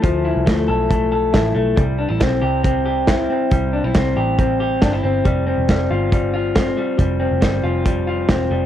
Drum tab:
HH |x-x-x-x-|x-x-x-x-|x-x-x-x-|x-x-x-x-|
SD |--o---o-|--o---o-|--o---o-|--o---o-|
BD |o-o-o-o-|o-o-o-o-|o-o-o-o-|o-o-o-o-|

HH |x-x-x-x-|
SD |--o---o-|
BD |o-o-o-o-|